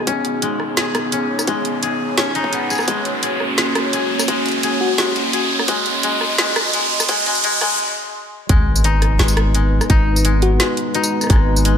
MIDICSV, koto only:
0, 0, Header, 1, 2, 480
1, 0, Start_track
1, 0, Key_signature, 5, "minor"
1, 0, Tempo, 350877
1, 98, Time_signature, 4, 2, 24, 8
1, 16111, End_track
2, 0, Start_track
2, 0, Title_t, "Koto"
2, 0, Program_c, 0, 107
2, 0, Note_on_c, 0, 56, 77
2, 0, Note_on_c, 0, 68, 71
2, 100, Note_on_c, 0, 61, 81
2, 563, Note_off_c, 0, 56, 0
2, 579, Note_on_c, 0, 56, 79
2, 1054, Note_off_c, 0, 68, 0
2, 1060, Note_on_c, 0, 68, 77
2, 1536, Note_off_c, 0, 61, 0
2, 1541, Note_on_c, 0, 61, 71
2, 2003, Note_off_c, 0, 56, 0
2, 2020, Note_on_c, 0, 56, 78
2, 2493, Note_off_c, 0, 68, 0
2, 2498, Note_on_c, 0, 68, 77
2, 2973, Note_off_c, 0, 61, 0
2, 2979, Note_on_c, 0, 61, 81
2, 3218, Note_on_c, 0, 63, 99
2, 3459, Note_on_c, 0, 59, 69
2, 3693, Note_off_c, 0, 68, 0
2, 3699, Note_on_c, 0, 68, 75
2, 3921, Note_off_c, 0, 56, 0
2, 3938, Note_on_c, 0, 56, 72
2, 4412, Note_off_c, 0, 68, 0
2, 4418, Note_on_c, 0, 68, 69
2, 4881, Note_off_c, 0, 56, 0
2, 4898, Note_on_c, 0, 56, 69
2, 5373, Note_off_c, 0, 68, 0
2, 5378, Note_on_c, 0, 68, 68
2, 5841, Note_off_c, 0, 56, 0
2, 5858, Note_on_c, 0, 56, 79
2, 6333, Note_off_c, 0, 68, 0
2, 6338, Note_on_c, 0, 68, 71
2, 6414, Note_off_c, 0, 61, 0
2, 6424, Note_off_c, 0, 63, 0
2, 6800, Note_off_c, 0, 56, 0
2, 6816, Note_on_c, 0, 56, 77
2, 7141, Note_off_c, 0, 59, 0
2, 7289, Note_off_c, 0, 68, 0
2, 7294, Note_on_c, 0, 68, 70
2, 7759, Note_off_c, 0, 56, 0
2, 7775, Note_on_c, 0, 56, 79
2, 8240, Note_off_c, 0, 56, 0
2, 8256, Note_on_c, 0, 56, 86
2, 8719, Note_off_c, 0, 56, 0
2, 8736, Note_on_c, 0, 56, 82
2, 9199, Note_off_c, 0, 56, 0
2, 9216, Note_on_c, 0, 56, 83
2, 9681, Note_off_c, 0, 56, 0
2, 9697, Note_on_c, 0, 56, 85
2, 9921, Note_off_c, 0, 56, 0
2, 9938, Note_on_c, 0, 56, 84
2, 9990, Note_off_c, 0, 68, 0
2, 10163, Note_off_c, 0, 56, 0
2, 10180, Note_on_c, 0, 56, 90
2, 10400, Note_off_c, 0, 56, 0
2, 10417, Note_on_c, 0, 56, 90
2, 11604, Note_off_c, 0, 56, 0
2, 11621, Note_on_c, 0, 56, 83
2, 12101, Note_on_c, 0, 63, 103
2, 12564, Note_off_c, 0, 56, 0
2, 12580, Note_on_c, 0, 56, 76
2, 13044, Note_off_c, 0, 56, 0
2, 13060, Note_on_c, 0, 56, 71
2, 13534, Note_off_c, 0, 63, 0
2, 13540, Note_on_c, 0, 63, 105
2, 14003, Note_off_c, 0, 56, 0
2, 14019, Note_on_c, 0, 56, 79
2, 14482, Note_off_c, 0, 56, 0
2, 14498, Note_on_c, 0, 56, 83
2, 14972, Note_off_c, 0, 63, 0
2, 14977, Note_on_c, 0, 63, 101
2, 15442, Note_off_c, 0, 56, 0
2, 15459, Note_on_c, 0, 56, 80
2, 15924, Note_off_c, 0, 56, 0
2, 15940, Note_on_c, 0, 56, 79
2, 16111, Note_off_c, 0, 56, 0
2, 16111, Note_off_c, 0, 63, 0
2, 16111, End_track
0, 0, End_of_file